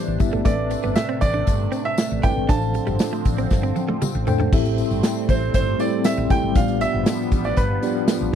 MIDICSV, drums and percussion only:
0, 0, Header, 1, 2, 480
1, 0, Start_track
1, 0, Key_signature, 0, "minor"
1, 0, Tempo, 508475
1, 430, Time_signature, 4, 2, 24, 8
1, 7882, End_track
2, 0, Start_track
2, 0, Title_t, "Drums"
2, 186, Note_on_c, 9, 54, 45
2, 189, Note_on_c, 9, 42, 64
2, 191, Note_on_c, 9, 36, 103
2, 280, Note_off_c, 9, 54, 0
2, 284, Note_off_c, 9, 42, 0
2, 285, Note_off_c, 9, 36, 0
2, 424, Note_on_c, 9, 54, 54
2, 428, Note_on_c, 9, 42, 94
2, 429, Note_on_c, 9, 36, 110
2, 518, Note_off_c, 9, 54, 0
2, 522, Note_off_c, 9, 42, 0
2, 524, Note_off_c, 9, 36, 0
2, 666, Note_on_c, 9, 54, 49
2, 669, Note_on_c, 9, 42, 79
2, 760, Note_off_c, 9, 54, 0
2, 763, Note_off_c, 9, 42, 0
2, 781, Note_on_c, 9, 54, 31
2, 876, Note_off_c, 9, 54, 0
2, 902, Note_on_c, 9, 54, 80
2, 907, Note_on_c, 9, 42, 90
2, 909, Note_off_c, 9, 54, 0
2, 909, Note_on_c, 9, 54, 56
2, 910, Note_on_c, 9, 38, 119
2, 1001, Note_off_c, 9, 42, 0
2, 1003, Note_off_c, 9, 54, 0
2, 1004, Note_off_c, 9, 38, 0
2, 1143, Note_on_c, 9, 54, 49
2, 1148, Note_on_c, 9, 42, 69
2, 1151, Note_on_c, 9, 36, 86
2, 1237, Note_off_c, 9, 54, 0
2, 1242, Note_off_c, 9, 42, 0
2, 1246, Note_off_c, 9, 36, 0
2, 1386, Note_on_c, 9, 42, 93
2, 1388, Note_on_c, 9, 54, 54
2, 1392, Note_on_c, 9, 36, 86
2, 1481, Note_off_c, 9, 42, 0
2, 1482, Note_off_c, 9, 54, 0
2, 1487, Note_off_c, 9, 36, 0
2, 1627, Note_on_c, 9, 54, 50
2, 1633, Note_on_c, 9, 42, 73
2, 1721, Note_off_c, 9, 54, 0
2, 1728, Note_off_c, 9, 42, 0
2, 1865, Note_on_c, 9, 54, 95
2, 1870, Note_off_c, 9, 54, 0
2, 1870, Note_on_c, 9, 54, 66
2, 1871, Note_on_c, 9, 38, 108
2, 1872, Note_on_c, 9, 42, 89
2, 1964, Note_off_c, 9, 54, 0
2, 1966, Note_off_c, 9, 38, 0
2, 1966, Note_off_c, 9, 42, 0
2, 1987, Note_on_c, 9, 54, 35
2, 2082, Note_off_c, 9, 54, 0
2, 2107, Note_on_c, 9, 54, 48
2, 2113, Note_on_c, 9, 36, 99
2, 2115, Note_on_c, 9, 42, 66
2, 2202, Note_off_c, 9, 54, 0
2, 2208, Note_off_c, 9, 36, 0
2, 2210, Note_off_c, 9, 42, 0
2, 2350, Note_on_c, 9, 54, 57
2, 2352, Note_on_c, 9, 36, 113
2, 2356, Note_on_c, 9, 42, 92
2, 2445, Note_off_c, 9, 54, 0
2, 2446, Note_off_c, 9, 36, 0
2, 2450, Note_off_c, 9, 42, 0
2, 2469, Note_on_c, 9, 54, 33
2, 2564, Note_off_c, 9, 54, 0
2, 2588, Note_on_c, 9, 54, 46
2, 2593, Note_on_c, 9, 42, 74
2, 2682, Note_off_c, 9, 54, 0
2, 2688, Note_off_c, 9, 42, 0
2, 2707, Note_on_c, 9, 54, 33
2, 2802, Note_off_c, 9, 54, 0
2, 2824, Note_on_c, 9, 54, 80
2, 2830, Note_on_c, 9, 42, 88
2, 2832, Note_off_c, 9, 54, 0
2, 2832, Note_on_c, 9, 54, 58
2, 2833, Note_on_c, 9, 38, 119
2, 2924, Note_off_c, 9, 42, 0
2, 2926, Note_off_c, 9, 54, 0
2, 2927, Note_off_c, 9, 38, 0
2, 3069, Note_on_c, 9, 54, 50
2, 3073, Note_on_c, 9, 36, 91
2, 3073, Note_on_c, 9, 42, 72
2, 3163, Note_off_c, 9, 54, 0
2, 3167, Note_off_c, 9, 36, 0
2, 3168, Note_off_c, 9, 42, 0
2, 3191, Note_on_c, 9, 54, 29
2, 3193, Note_on_c, 9, 42, 56
2, 3285, Note_off_c, 9, 54, 0
2, 3287, Note_off_c, 9, 42, 0
2, 3308, Note_on_c, 9, 54, 54
2, 3314, Note_on_c, 9, 36, 87
2, 3314, Note_on_c, 9, 38, 55
2, 3403, Note_off_c, 9, 54, 0
2, 3409, Note_off_c, 9, 36, 0
2, 3409, Note_off_c, 9, 38, 0
2, 3550, Note_on_c, 9, 54, 47
2, 3556, Note_on_c, 9, 48, 71
2, 3644, Note_off_c, 9, 54, 0
2, 3650, Note_off_c, 9, 48, 0
2, 3678, Note_on_c, 9, 48, 71
2, 3772, Note_off_c, 9, 48, 0
2, 3793, Note_on_c, 9, 54, 94
2, 3797, Note_on_c, 9, 47, 88
2, 3887, Note_off_c, 9, 54, 0
2, 3891, Note_off_c, 9, 47, 0
2, 3910, Note_on_c, 9, 54, 34
2, 4004, Note_off_c, 9, 54, 0
2, 4028, Note_on_c, 9, 54, 47
2, 4037, Note_on_c, 9, 43, 111
2, 4123, Note_off_c, 9, 54, 0
2, 4132, Note_off_c, 9, 43, 0
2, 4157, Note_on_c, 9, 43, 93
2, 4252, Note_off_c, 9, 43, 0
2, 4272, Note_on_c, 9, 36, 116
2, 4272, Note_on_c, 9, 54, 55
2, 4276, Note_on_c, 9, 49, 98
2, 4367, Note_off_c, 9, 36, 0
2, 4367, Note_off_c, 9, 54, 0
2, 4370, Note_off_c, 9, 49, 0
2, 4391, Note_on_c, 9, 54, 34
2, 4394, Note_on_c, 9, 42, 49
2, 4485, Note_off_c, 9, 54, 0
2, 4489, Note_off_c, 9, 42, 0
2, 4513, Note_on_c, 9, 42, 83
2, 4513, Note_on_c, 9, 54, 51
2, 4607, Note_off_c, 9, 42, 0
2, 4607, Note_off_c, 9, 54, 0
2, 4637, Note_on_c, 9, 54, 35
2, 4731, Note_off_c, 9, 54, 0
2, 4750, Note_on_c, 9, 42, 89
2, 4752, Note_on_c, 9, 54, 61
2, 4753, Note_on_c, 9, 38, 124
2, 4757, Note_off_c, 9, 54, 0
2, 4757, Note_on_c, 9, 54, 82
2, 4844, Note_off_c, 9, 42, 0
2, 4848, Note_off_c, 9, 38, 0
2, 4851, Note_off_c, 9, 54, 0
2, 4992, Note_on_c, 9, 36, 93
2, 4992, Note_on_c, 9, 42, 71
2, 4997, Note_on_c, 9, 54, 50
2, 5086, Note_off_c, 9, 42, 0
2, 5087, Note_off_c, 9, 36, 0
2, 5091, Note_off_c, 9, 54, 0
2, 5230, Note_on_c, 9, 42, 102
2, 5232, Note_on_c, 9, 36, 83
2, 5234, Note_on_c, 9, 54, 58
2, 5324, Note_off_c, 9, 42, 0
2, 5327, Note_off_c, 9, 36, 0
2, 5328, Note_off_c, 9, 54, 0
2, 5470, Note_on_c, 9, 54, 48
2, 5474, Note_on_c, 9, 42, 74
2, 5564, Note_off_c, 9, 54, 0
2, 5568, Note_off_c, 9, 42, 0
2, 5705, Note_on_c, 9, 54, 96
2, 5708, Note_off_c, 9, 54, 0
2, 5708, Note_on_c, 9, 54, 67
2, 5710, Note_on_c, 9, 38, 104
2, 5710, Note_on_c, 9, 42, 89
2, 5803, Note_off_c, 9, 54, 0
2, 5804, Note_off_c, 9, 38, 0
2, 5804, Note_off_c, 9, 42, 0
2, 5829, Note_on_c, 9, 54, 33
2, 5923, Note_off_c, 9, 54, 0
2, 5949, Note_on_c, 9, 54, 47
2, 5950, Note_on_c, 9, 42, 68
2, 5951, Note_on_c, 9, 36, 100
2, 6044, Note_off_c, 9, 42, 0
2, 6044, Note_off_c, 9, 54, 0
2, 6045, Note_off_c, 9, 36, 0
2, 6186, Note_on_c, 9, 54, 57
2, 6188, Note_on_c, 9, 36, 116
2, 6188, Note_on_c, 9, 42, 100
2, 6280, Note_off_c, 9, 54, 0
2, 6283, Note_off_c, 9, 36, 0
2, 6283, Note_off_c, 9, 42, 0
2, 6308, Note_on_c, 9, 42, 50
2, 6308, Note_on_c, 9, 54, 32
2, 6402, Note_off_c, 9, 42, 0
2, 6402, Note_off_c, 9, 54, 0
2, 6427, Note_on_c, 9, 42, 81
2, 6427, Note_on_c, 9, 54, 50
2, 6522, Note_off_c, 9, 42, 0
2, 6522, Note_off_c, 9, 54, 0
2, 6665, Note_on_c, 9, 42, 93
2, 6666, Note_on_c, 9, 54, 59
2, 6668, Note_on_c, 9, 38, 117
2, 6669, Note_off_c, 9, 54, 0
2, 6669, Note_on_c, 9, 54, 85
2, 6759, Note_off_c, 9, 42, 0
2, 6762, Note_off_c, 9, 38, 0
2, 6763, Note_off_c, 9, 54, 0
2, 6905, Note_on_c, 9, 42, 74
2, 6908, Note_on_c, 9, 54, 49
2, 6909, Note_on_c, 9, 36, 92
2, 7000, Note_off_c, 9, 42, 0
2, 7002, Note_off_c, 9, 54, 0
2, 7003, Note_off_c, 9, 36, 0
2, 7029, Note_on_c, 9, 54, 30
2, 7124, Note_off_c, 9, 54, 0
2, 7143, Note_on_c, 9, 42, 96
2, 7149, Note_on_c, 9, 36, 90
2, 7152, Note_on_c, 9, 54, 57
2, 7238, Note_off_c, 9, 42, 0
2, 7244, Note_off_c, 9, 36, 0
2, 7247, Note_off_c, 9, 54, 0
2, 7387, Note_on_c, 9, 42, 69
2, 7392, Note_on_c, 9, 54, 51
2, 7482, Note_off_c, 9, 42, 0
2, 7486, Note_off_c, 9, 54, 0
2, 7624, Note_on_c, 9, 54, 66
2, 7625, Note_on_c, 9, 38, 114
2, 7625, Note_on_c, 9, 42, 95
2, 7628, Note_off_c, 9, 54, 0
2, 7628, Note_on_c, 9, 54, 97
2, 7720, Note_off_c, 9, 38, 0
2, 7720, Note_off_c, 9, 42, 0
2, 7722, Note_off_c, 9, 54, 0
2, 7882, End_track
0, 0, End_of_file